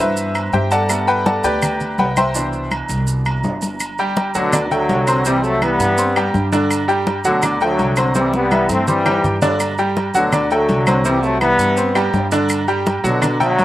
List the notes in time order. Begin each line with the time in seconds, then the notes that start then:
Already playing: B2 E3 D4
0.00 G2 E4 B4 C5 E5
0.17 high conga, maracas
0.35 high conga, low agogo, claves, maracas
0.53 G2 G4 C5 E5 G5, high conga, maracas
0.71 A4 D5 F#5 A5, low agogo, maracas
0.89 G3 A3 B3, high conga, low agogo, claves, maracas
1.07 B4 F#5 G5 B5, high conga, maracas
1.26 A4 D5 F#5 A5, high conga, low agogo, maracas
1.44 D2 G4 B4 D5 G5, high conga, maracas
1.62 high conga, low conga, low agogo, claves, maracas
1.80 high conga, low conga, low agogo, maracas
1.98 C2 B4 F#5 G5 B5, high conga, low timbale, low agogo, maracas
2.16 C5 E5 G5 C6, high conga, low agogo, claves, maracas
2.35 B2 E3 D4, high conga, maracas
2.53 high conga, maracas
2.71 high conga, low agogo, claves, maracas
2.89 C2, high conga, low agogo, maracas
3.07 high conga, maracas
3.25 high conga, low agogo, claves, maracas
3.43 G1, high conga, low timbale, maracas
3.62 high conga, low agogo, maracas
3.80 high conga, low agogo, claves, maracas
3.98 G3 G4 G5, high conga, maracas
4.16 high conga, low agogo, maracas
4.34 D2 B2 D3 F#3 F#4 F#5, high conga, maracas
4.53 D4 D5 D6, high conga, low conga, low agogo, claves, maracas
4.71 D3 F#3 A3 A4 G5, high conga, low conga, low agogo, maracas
4.89 C2, high conga, low timbale, low agogo, maracas
5.07 C4 C5 C6, low agogo, claves, maracas
5.25 C3 E3 G3 C4 C5, high conga, maracas
5.44 F#3 A3, high conga, maracas
5.62 E3 G3 B3 E4 E5, high conga, low agogo, claves, maracas
5.79 G2, high conga, low agogo, maracas
5.98 C4 C5 C6, high conga, maracas
6.16 G3 G4 G5, high conga, low agogo, claves, maracas
6.34 G2, high conga, maracas
6.52 D3 D4 D5, high conga, low agogo, maracas
6.71 high conga, low agogo, claves, maracas
6.88 G3 G4 G5, high conga, maracas
7.07 high conga, low agogo, maracas
7.24 D2 B2 D3 F#3 F#4 F#5, high conga, maracas
7.42 D4 D5 D6, high conga, low conga, low agogo, claves, maracas
7.61 D3 F#3 A3 A4 G5, high conga, low agogo, maracas
7.79 C2, high conga, low agogo, maracas
7.96 C4 C5 C6, low agogo, claves, maracas
8.15 C3 E3 G3 C4 C5, high conga, maracas
8.33 G3 B3, high conga, maracas
8.51 E3 E4 E5, high conga, low agogo, claves, maracas
8.69 G2 A3 C4, high conga, low agogo, maracas
8.87 E3 G3 C4 C5 C6, low conga, maracas
9.06 G3 G4 G5, low conga, high timbale, low agogo, claves, maracas
9.24 G2, low conga, maracas
9.42 D3 D4 D5, low conga, low timbale, low agogo, maracas
9.60 high conga, low agogo, claves, maracas
9.78 G3 G4 G5, high conga, maracas
9.96 high conga, low agogo, maracas
10.14 D2 B2 D3 F#3 F#4 F#5, high conga, maracas
10.32 D4 D5 D6, high conga, low conga, low agogo, claves, maracas
10.51 D3 F#3 A3 A4 G5, high conga, low agogo, maracas
10.69 C2, high conga, low agogo, maracas
10.87 C4 C5 C6, high conga, low agogo, claves, maracas
11.05 C3 E3 G3 C4 C5, maracas
11.19 A3 B3, maracas
11.23 F#3, high conga
11.41 E3 G3 B3 E4 E5, high conga, low agogo, claves, maracas
11.59 G2, high conga, low agogo, maracas
11.77 C4 C5 C6, high conga, maracas
11.95 G3 G4 G5, high conga, low agogo, claves, maracas
12.13 G2, high conga, low timbale, maracas
12.31 D3 D4 D5, low agogo, maracas
12.49 high conga, low agogo, claves, maracas
12.68 G3 G4 G5, high conga, maracas
12.86 high conga, low agogo, maracas
13.04 B2 D3 F#3 F#4 F#5, high conga, maracas
13.22 D4 D5 D6, high conga, low conga, low agogo, claves, maracas
13.40 D3 F#3 A3 A4 G5, high conga, low conga, low agogo, maracas
13.58 C2, high conga, low timbale, low agogo, maracas